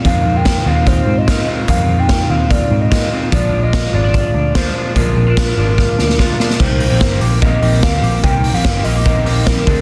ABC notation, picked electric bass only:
X:1
M:4/4
L:1/16
Q:1/4=147
K:Cm
V:1 name="Picked electric bass" clef=bass
F,,2 F,,4 E,,4 A,,4 z2 | F,,2 F,,4 E,,4 A,,4 z2 | B,,,2 B,,,4 A,,,4 D,,4 z2 | B,,,2 B,,,4 A,,,4 D,,4 z2 |
C,,3 B,,, z2 B,,,4 B,,,2 D,,2 B,,,2 | C,,3 B,,, G,,,2 B,,,6 B,,,2 D,,2 |]